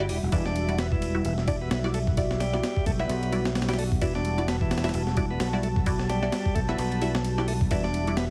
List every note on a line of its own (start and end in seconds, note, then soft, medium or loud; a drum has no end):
0.00 8.30 G3 medium
0.00 8.30 F#4 medium
0.00 0.31 F#5 medium
0.00 swell medium
0.09 0.20 E1 loud
0.09 0.18 G3 medium
0.09 open hi-hat medium
0.23 0.30 E1 medium
0.32 1.21 E1 loud
0.32 0.44 E3 loud
0.32 0.46 G3 medium
0.32 0.46 E4 medium
0.32 0.46 F#4 medium
0.32 0.46 D5 medium
0.32 4.00 E5 medium
0.32 kick loud
0.32 ride medium
0.45 0.78 D4 medium
0.45 snare soft
0.56 ride medium
0.68 0.79 G3 medium
0.68 0.79 E4 medium
0.68 0.79 F#4 medium
0.68 0.79 D5 medium
0.68 ride soft
0.78 0.87 B3 medium
0.78 snare loud
0.78 ride medium
0.92 1.24 E3 medium
0.92 kick medium
1.02 ride medium
1.15 1.25 G3 medium
1.15 1.25 E4 medium
1.15 1.25 F#4 medium
1.15 1.25 E5 medium
1.25 1.67 E1 loud
1.25 1.33 E3 medium
1.25 ride medium
1.38 snare soft
1.48 1.61 G3 medium
1.48 1.56 D4 medium
1.48 1.61 E4 medium
1.48 1.61 F#4 medium
1.48 1.61 D5 medium
1.48 kick loud
1.48 ride medium
1.61 1.70 B3 medium
1.71 2.59 B1 loud
1.71 1.79 B3 medium
1.71 snare loud
1.71 ride medium
1.84 1.94 G3 loud
1.84 1.94 E4 medium
1.84 1.94 F#4 medium
1.84 1.94 D5 loud
1.84 snare soft
1.94 1.99 A3 loud
1.94 ride medium
2.07 kick medium
2.17 2.30 G3 medium
2.17 2.30 E4 medium
2.17 2.30 F#4 medium
2.17 2.30 D5 medium
2.17 kick loud
2.17 ride medium
2.31 snare medium
2.40 2.85 G3 loud
2.40 snare medium
2.40 ride medium
2.53 2.63 G3 medium
2.53 2.63 E4 medium
2.53 2.63 F#4 medium
2.53 2.63 D5 medium
2.53 snare soft
2.63 snare loud
2.63 ride medium
2.76 kick medium
2.86 3.05 B1 medium
2.86 2.91 A3 loud
2.86 kick loud
2.86 ride medium
3.00 3.10 G3 medium
3.00 3.44 B3 medium
3.00 3.10 E4 medium
3.00 3.10 F#4 medium
3.00 3.10 E5 loud
3.00 snare soft
3.09 3.98 B1 loud
3.09 ride medium
3.23 ride soft
3.32 3.46 G3 medium
3.32 3.46 E4 medium
3.32 3.46 F#4 medium
3.32 3.46 D5 medium
3.32 ride medium
3.45 snare loud
3.55 snare medium
3.55 ride medium
3.62 snare medium
3.62 ride medium
3.69 3.79 G3 loud
3.69 3.78 G3 loud
3.69 3.79 E4 medium
3.69 3.79 F#4 medium
3.69 3.79 D5 loud
3.69 snare medium
3.69 ride medium
3.73 snare medium
3.73 ride medium
3.79 3.84 A3 loud
3.79 open hi-hat medium
3.92 kick loud
4.01 4.90 E1 loud
4.01 4.14 E3 loud
4.01 4.15 G3 medium
4.01 4.15 E4 medium
4.01 4.15 F#4 medium
4.01 4.15 D5 medium
4.01 7.70 A5 medium
4.01 kick loud
4.01 ride medium
4.15 4.47 D4 medium
4.15 snare soft
4.25 ride medium
4.38 4.48 G3 medium
4.38 4.48 E4 medium
4.38 4.48 F#4 medium
4.38 4.48 D5 loud
4.38 ride soft
4.48 4.56 B3 medium
4.48 snare loud
4.48 ride medium
4.61 4.93 E3 medium
4.61 kick loud
4.71 snare medium
4.71 ride medium
4.78 snare medium
4.78 ride medium
4.84 4.94 G3 medium
4.84 4.94 E4 medium
4.84 4.94 F#4 medium
4.84 4.94 E5 loud
4.84 snare medium
4.84 ride medium
4.89 snare medium
4.89 ride medium
4.94 5.36 E1 loud
4.94 5.02 E3 medium
4.94 ride medium
5.07 snare soft
5.17 5.30 G3 medium
5.17 5.25 D4 medium
5.17 5.30 E4 medium
5.17 5.30 F#4 medium
5.17 5.30 D5 medium
5.17 kick loud
5.17 ride medium
5.31 5.39 B3 medium
5.40 6.29 B1 loud
5.40 5.49 B3 medium
5.40 snare loud
5.40 ride medium
5.53 5.63 G3 loud
5.53 5.63 E4 medium
5.53 5.63 F#4 medium
5.53 5.63 D5 loud
5.53 snare soft
5.63 5.68 A3 loud
5.63 ride medium
5.76 kick loud
5.86 6.00 G3 medium
5.86 6.00 E4 medium
5.86 6.00 F#4 medium
5.86 6.00 D5 medium
5.86 kick loud
5.86 ride medium
5.99 snare medium
6.09 6.55 G3 loud
6.09 snare medium
6.09 ride medium
6.22 6.33 G3 medium
6.22 6.33 E4 medium
6.22 6.33 F#4 medium
6.22 6.33 D5 loud
6.22 snare medium
6.32 snare loud
6.32 ride medium
6.46 kick medium
6.55 6.74 B1 medium
6.55 6.60 A3 medium
6.55 kick medium
6.55 ride medium
6.69 6.79 G3 medium
6.69 7.13 B3 medium
6.69 6.79 E4 medium
6.69 6.79 F#4 medium
6.69 6.79 E5 medium
6.69 snare soft
6.79 7.67 B1 loud
6.79 ride medium
6.92 ride soft
7.02 7.15 G3 medium
7.02 7.15 E4 medium
7.02 7.15 F#4 medium
7.02 7.15 E5 loud
7.02 ride medium
7.15 snare loud
7.24 ride medium
7.38 7.47 G3 loud
7.38 7.56 G3 medium
7.38 7.56 E4 medium
7.38 7.56 F#4 medium
7.38 7.56 D5 medium
7.38 snare medium
7.48 7.53 A3 loud
7.48 open hi-hat medium
7.61 kick loud
7.71 8.30 E1 loud
7.71 7.83 E3 loud
7.71 7.84 G3 medium
7.71 7.84 E4 medium
7.71 7.84 F#4 medium
7.71 7.84 D5 medium
7.71 8.30 E5 medium
7.71 kick loud
7.71 ride medium
7.84 8.16 D4 medium
7.84 snare soft
7.94 ride medium
8.07 8.17 G3 medium
8.07 8.17 E4 medium
8.07 8.17 F#4 medium
8.07 8.17 D5 loud
8.07 ride soft
8.17 8.25 B3 medium
8.17 snare loud
8.17 ride medium